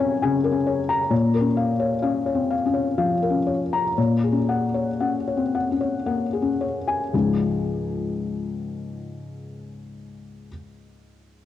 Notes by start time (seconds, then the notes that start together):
Already playing: F#2 C4 C#4 A#4 G#5
0.00 C#5
0.22 C#3 G#5
0.44 A#4
0.52 C#4
0.67 C#5
0.89 A#5
1.10 A#2 C#5
1.34 A#4
1.41 C#4
1.57 F5
1.80 C#5
2.02 C#4 F5
2.26 C#5
2.34 C4
2.50 F5
2.66 C#4
2.74 C#5
2.98 F3 F5
3.22 A#4
3.30 C#4
3.46 C#5
3.73 A#5
3.98 A#2 C#5
4.24 G#4
4.32 C#4
4.49 F#5
4.74 C#5
5.00 C#4 F#5
5.28 C#5
5.37 C4
5.55 F#5
5.71 C#4
5.81 C#5
6.06 A#3 F#5
6.33 G#4
6.42 C#4
6.61 C#5
6.87 G#5
7.13 C#2 G#2 F3 G#3 C#4 D#4